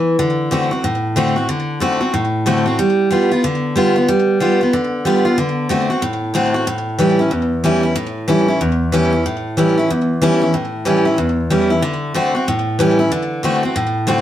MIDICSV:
0, 0, Header, 1, 2, 480
1, 0, Start_track
1, 0, Key_signature, 2, "major"
1, 0, Tempo, 322754
1, 287, Time_signature, 4, 2, 24, 8
1, 21136, End_track
2, 0, Start_track
2, 0, Title_t, "Steel-string acoustic guitar"
2, 0, Program_c, 0, 25
2, 0, Note_on_c, 0, 52, 87
2, 266, Note_off_c, 0, 52, 0
2, 282, Note_on_c, 0, 50, 92
2, 740, Note_off_c, 0, 50, 0
2, 758, Note_on_c, 0, 50, 84
2, 774, Note_on_c, 0, 57, 84
2, 776, Note_on_c, 0, 60, 80
2, 786, Note_on_c, 0, 66, 84
2, 1039, Note_off_c, 0, 66, 0
2, 1051, Note_off_c, 0, 50, 0
2, 1057, Note_on_c, 0, 66, 60
2, 1059, Note_off_c, 0, 57, 0
2, 1060, Note_off_c, 0, 60, 0
2, 1080, Note_on_c, 0, 60, 50
2, 1237, Note_off_c, 0, 66, 0
2, 1249, Note_off_c, 0, 60, 0
2, 1249, Note_on_c, 0, 45, 88
2, 1723, Note_on_c, 0, 50, 86
2, 1736, Note_on_c, 0, 57, 97
2, 1740, Note_on_c, 0, 60, 83
2, 1748, Note_on_c, 0, 66, 92
2, 2003, Note_off_c, 0, 66, 0
2, 2015, Note_off_c, 0, 50, 0
2, 2021, Note_on_c, 0, 66, 60
2, 2022, Note_off_c, 0, 57, 0
2, 2024, Note_off_c, 0, 60, 0
2, 2046, Note_on_c, 0, 60, 46
2, 2177, Note_off_c, 0, 45, 0
2, 2201, Note_off_c, 0, 66, 0
2, 2211, Note_on_c, 0, 50, 93
2, 2213, Note_off_c, 0, 60, 0
2, 2663, Note_off_c, 0, 50, 0
2, 2681, Note_on_c, 0, 50, 73
2, 2695, Note_on_c, 0, 57, 83
2, 2700, Note_on_c, 0, 60, 95
2, 2710, Note_on_c, 0, 66, 83
2, 2965, Note_off_c, 0, 66, 0
2, 2976, Note_off_c, 0, 50, 0
2, 2983, Note_off_c, 0, 57, 0
2, 2983, Note_on_c, 0, 66, 60
2, 2985, Note_off_c, 0, 60, 0
2, 3007, Note_on_c, 0, 60, 48
2, 3163, Note_off_c, 0, 66, 0
2, 3175, Note_off_c, 0, 60, 0
2, 3177, Note_on_c, 0, 45, 87
2, 3656, Note_on_c, 0, 50, 79
2, 3663, Note_on_c, 0, 57, 89
2, 3670, Note_on_c, 0, 60, 92
2, 3675, Note_on_c, 0, 66, 91
2, 3932, Note_off_c, 0, 66, 0
2, 3945, Note_off_c, 0, 50, 0
2, 3948, Note_off_c, 0, 57, 0
2, 3950, Note_on_c, 0, 66, 64
2, 3952, Note_off_c, 0, 60, 0
2, 3979, Note_on_c, 0, 60, 53
2, 4103, Note_off_c, 0, 45, 0
2, 4128, Note_off_c, 0, 66, 0
2, 4143, Note_off_c, 0, 60, 0
2, 4146, Note_on_c, 0, 55, 88
2, 4600, Note_off_c, 0, 55, 0
2, 4618, Note_on_c, 0, 55, 82
2, 4635, Note_on_c, 0, 59, 76
2, 4645, Note_on_c, 0, 65, 78
2, 4907, Note_off_c, 0, 55, 0
2, 4911, Note_off_c, 0, 65, 0
2, 4915, Note_off_c, 0, 59, 0
2, 4929, Note_on_c, 0, 65, 66
2, 4957, Note_on_c, 0, 59, 56
2, 5099, Note_off_c, 0, 65, 0
2, 5113, Note_off_c, 0, 59, 0
2, 5115, Note_on_c, 0, 50, 86
2, 5585, Note_on_c, 0, 55, 76
2, 5601, Note_on_c, 0, 59, 101
2, 5615, Note_on_c, 0, 65, 84
2, 5867, Note_off_c, 0, 65, 0
2, 5872, Note_off_c, 0, 55, 0
2, 5880, Note_off_c, 0, 59, 0
2, 5884, Note_on_c, 0, 65, 62
2, 5913, Note_on_c, 0, 59, 53
2, 6035, Note_off_c, 0, 50, 0
2, 6058, Note_off_c, 0, 65, 0
2, 6073, Note_off_c, 0, 59, 0
2, 6074, Note_on_c, 0, 55, 100
2, 6530, Note_off_c, 0, 55, 0
2, 6548, Note_on_c, 0, 55, 84
2, 6562, Note_on_c, 0, 59, 89
2, 6571, Note_on_c, 0, 65, 93
2, 6835, Note_off_c, 0, 55, 0
2, 6835, Note_off_c, 0, 65, 0
2, 6842, Note_off_c, 0, 59, 0
2, 6853, Note_on_c, 0, 65, 56
2, 6881, Note_on_c, 0, 59, 51
2, 7024, Note_off_c, 0, 65, 0
2, 7038, Note_off_c, 0, 59, 0
2, 7039, Note_on_c, 0, 50, 97
2, 7512, Note_on_c, 0, 55, 84
2, 7531, Note_on_c, 0, 59, 90
2, 7541, Note_on_c, 0, 65, 100
2, 7788, Note_off_c, 0, 65, 0
2, 7798, Note_off_c, 0, 55, 0
2, 7806, Note_on_c, 0, 65, 63
2, 7808, Note_off_c, 0, 59, 0
2, 7836, Note_on_c, 0, 59, 51
2, 7960, Note_off_c, 0, 50, 0
2, 7982, Note_off_c, 0, 65, 0
2, 7997, Note_off_c, 0, 59, 0
2, 7998, Note_on_c, 0, 50, 94
2, 8447, Note_off_c, 0, 50, 0
2, 8465, Note_on_c, 0, 50, 83
2, 8477, Note_on_c, 0, 57, 91
2, 8484, Note_on_c, 0, 60, 80
2, 8494, Note_on_c, 0, 66, 88
2, 8755, Note_off_c, 0, 66, 0
2, 8756, Note_off_c, 0, 50, 0
2, 8762, Note_off_c, 0, 57, 0
2, 8765, Note_off_c, 0, 60, 0
2, 8773, Note_on_c, 0, 66, 63
2, 8799, Note_on_c, 0, 60, 53
2, 8947, Note_off_c, 0, 66, 0
2, 8955, Note_on_c, 0, 45, 90
2, 8959, Note_off_c, 0, 60, 0
2, 9424, Note_on_c, 0, 50, 75
2, 9440, Note_on_c, 0, 57, 91
2, 9448, Note_on_c, 0, 60, 92
2, 9452, Note_on_c, 0, 66, 93
2, 9711, Note_off_c, 0, 66, 0
2, 9717, Note_off_c, 0, 50, 0
2, 9725, Note_off_c, 0, 57, 0
2, 9729, Note_off_c, 0, 60, 0
2, 9729, Note_on_c, 0, 66, 62
2, 9756, Note_on_c, 0, 60, 49
2, 9880, Note_off_c, 0, 45, 0
2, 9906, Note_off_c, 0, 66, 0
2, 9919, Note_off_c, 0, 60, 0
2, 9920, Note_on_c, 0, 45, 86
2, 10388, Note_on_c, 0, 52, 85
2, 10402, Note_on_c, 0, 55, 81
2, 10412, Note_on_c, 0, 61, 93
2, 10421, Note_on_c, 0, 64, 82
2, 10675, Note_off_c, 0, 64, 0
2, 10680, Note_off_c, 0, 52, 0
2, 10687, Note_off_c, 0, 55, 0
2, 10692, Note_off_c, 0, 61, 0
2, 10693, Note_on_c, 0, 64, 59
2, 10722, Note_on_c, 0, 61, 52
2, 10843, Note_off_c, 0, 45, 0
2, 10869, Note_off_c, 0, 64, 0
2, 10871, Note_on_c, 0, 40, 93
2, 10883, Note_off_c, 0, 61, 0
2, 11358, Note_on_c, 0, 52, 89
2, 11369, Note_on_c, 0, 55, 88
2, 11375, Note_on_c, 0, 61, 86
2, 11384, Note_on_c, 0, 64, 99
2, 11629, Note_off_c, 0, 64, 0
2, 11645, Note_off_c, 0, 52, 0
2, 11646, Note_on_c, 0, 64, 67
2, 11651, Note_off_c, 0, 55, 0
2, 11654, Note_off_c, 0, 61, 0
2, 11676, Note_on_c, 0, 61, 47
2, 11799, Note_off_c, 0, 40, 0
2, 11826, Note_off_c, 0, 64, 0
2, 11831, Note_on_c, 0, 45, 90
2, 11841, Note_off_c, 0, 61, 0
2, 12309, Note_on_c, 0, 52, 82
2, 12318, Note_on_c, 0, 55, 74
2, 12325, Note_on_c, 0, 61, 87
2, 12338, Note_on_c, 0, 64, 76
2, 12598, Note_off_c, 0, 64, 0
2, 12601, Note_off_c, 0, 52, 0
2, 12605, Note_off_c, 0, 55, 0
2, 12609, Note_off_c, 0, 61, 0
2, 12616, Note_on_c, 0, 64, 68
2, 12642, Note_on_c, 0, 61, 53
2, 12759, Note_off_c, 0, 45, 0
2, 12791, Note_off_c, 0, 64, 0
2, 12802, Note_on_c, 0, 40, 84
2, 12804, Note_off_c, 0, 61, 0
2, 13269, Note_on_c, 0, 52, 91
2, 13280, Note_on_c, 0, 55, 80
2, 13288, Note_on_c, 0, 61, 96
2, 13298, Note_on_c, 0, 64, 98
2, 13553, Note_off_c, 0, 64, 0
2, 13561, Note_off_c, 0, 52, 0
2, 13567, Note_off_c, 0, 55, 0
2, 13571, Note_off_c, 0, 61, 0
2, 13571, Note_on_c, 0, 64, 60
2, 13596, Note_on_c, 0, 61, 48
2, 13724, Note_off_c, 0, 40, 0
2, 13748, Note_off_c, 0, 64, 0
2, 13761, Note_off_c, 0, 61, 0
2, 13767, Note_on_c, 0, 45, 83
2, 14233, Note_on_c, 0, 52, 77
2, 14244, Note_on_c, 0, 55, 85
2, 14249, Note_on_c, 0, 61, 81
2, 14260, Note_on_c, 0, 64, 93
2, 14520, Note_off_c, 0, 64, 0
2, 14522, Note_off_c, 0, 52, 0
2, 14528, Note_off_c, 0, 55, 0
2, 14531, Note_off_c, 0, 61, 0
2, 14538, Note_on_c, 0, 64, 56
2, 14564, Note_on_c, 0, 61, 58
2, 14686, Note_off_c, 0, 45, 0
2, 14711, Note_off_c, 0, 64, 0
2, 14724, Note_off_c, 0, 61, 0
2, 14730, Note_on_c, 0, 40, 94
2, 15192, Note_on_c, 0, 52, 93
2, 15203, Note_on_c, 0, 55, 89
2, 15211, Note_on_c, 0, 61, 95
2, 15216, Note_on_c, 0, 64, 108
2, 15473, Note_off_c, 0, 64, 0
2, 15481, Note_off_c, 0, 52, 0
2, 15486, Note_off_c, 0, 55, 0
2, 15490, Note_off_c, 0, 61, 0
2, 15491, Note_on_c, 0, 64, 61
2, 15512, Note_on_c, 0, 61, 46
2, 15646, Note_off_c, 0, 40, 0
2, 15667, Note_off_c, 0, 64, 0
2, 15672, Note_on_c, 0, 45, 86
2, 15677, Note_off_c, 0, 61, 0
2, 16140, Note_on_c, 0, 52, 93
2, 16147, Note_on_c, 0, 55, 86
2, 16155, Note_on_c, 0, 61, 88
2, 16167, Note_on_c, 0, 64, 91
2, 16419, Note_off_c, 0, 64, 0
2, 16434, Note_off_c, 0, 52, 0
2, 16437, Note_off_c, 0, 55, 0
2, 16437, Note_on_c, 0, 64, 58
2, 16441, Note_off_c, 0, 61, 0
2, 16466, Note_on_c, 0, 61, 47
2, 16595, Note_off_c, 0, 45, 0
2, 16618, Note_off_c, 0, 64, 0
2, 16627, Note_on_c, 0, 40, 90
2, 16633, Note_off_c, 0, 61, 0
2, 17108, Note_on_c, 0, 52, 81
2, 17110, Note_on_c, 0, 55, 83
2, 17120, Note_on_c, 0, 61, 89
2, 17128, Note_on_c, 0, 64, 95
2, 17385, Note_off_c, 0, 64, 0
2, 17396, Note_off_c, 0, 52, 0
2, 17397, Note_off_c, 0, 55, 0
2, 17401, Note_off_c, 0, 61, 0
2, 17402, Note_on_c, 0, 64, 62
2, 17433, Note_on_c, 0, 61, 53
2, 17551, Note_off_c, 0, 40, 0
2, 17579, Note_off_c, 0, 64, 0
2, 17585, Note_on_c, 0, 50, 91
2, 17595, Note_off_c, 0, 61, 0
2, 18042, Note_off_c, 0, 50, 0
2, 18060, Note_on_c, 0, 50, 84
2, 18071, Note_on_c, 0, 57, 89
2, 18081, Note_on_c, 0, 60, 81
2, 18087, Note_on_c, 0, 66, 89
2, 18344, Note_off_c, 0, 66, 0
2, 18350, Note_off_c, 0, 50, 0
2, 18355, Note_off_c, 0, 57, 0
2, 18360, Note_off_c, 0, 60, 0
2, 18362, Note_on_c, 0, 66, 57
2, 18385, Note_on_c, 0, 60, 53
2, 18537, Note_off_c, 0, 66, 0
2, 18548, Note_off_c, 0, 60, 0
2, 18558, Note_on_c, 0, 45, 90
2, 19018, Note_on_c, 0, 52, 83
2, 19034, Note_on_c, 0, 55, 86
2, 19037, Note_on_c, 0, 61, 93
2, 19045, Note_on_c, 0, 64, 97
2, 19300, Note_off_c, 0, 64, 0
2, 19306, Note_off_c, 0, 52, 0
2, 19314, Note_off_c, 0, 55, 0
2, 19316, Note_off_c, 0, 61, 0
2, 19317, Note_on_c, 0, 64, 70
2, 19347, Note_on_c, 0, 61, 48
2, 19471, Note_off_c, 0, 45, 0
2, 19492, Note_off_c, 0, 64, 0
2, 19506, Note_on_c, 0, 50, 92
2, 19507, Note_off_c, 0, 61, 0
2, 19955, Note_off_c, 0, 50, 0
2, 19973, Note_on_c, 0, 50, 87
2, 19989, Note_on_c, 0, 57, 83
2, 19993, Note_on_c, 0, 60, 83
2, 20000, Note_on_c, 0, 66, 95
2, 20253, Note_off_c, 0, 66, 0
2, 20261, Note_off_c, 0, 50, 0
2, 20269, Note_off_c, 0, 57, 0
2, 20271, Note_off_c, 0, 60, 0
2, 20271, Note_on_c, 0, 66, 60
2, 20301, Note_on_c, 0, 60, 51
2, 20446, Note_off_c, 0, 66, 0
2, 20459, Note_on_c, 0, 45, 95
2, 20462, Note_off_c, 0, 60, 0
2, 20922, Note_on_c, 0, 50, 84
2, 20932, Note_on_c, 0, 57, 95
2, 20940, Note_on_c, 0, 60, 97
2, 20946, Note_on_c, 0, 66, 93
2, 21136, Note_off_c, 0, 45, 0
2, 21136, Note_off_c, 0, 50, 0
2, 21136, Note_off_c, 0, 57, 0
2, 21136, Note_off_c, 0, 60, 0
2, 21136, Note_off_c, 0, 66, 0
2, 21136, End_track
0, 0, End_of_file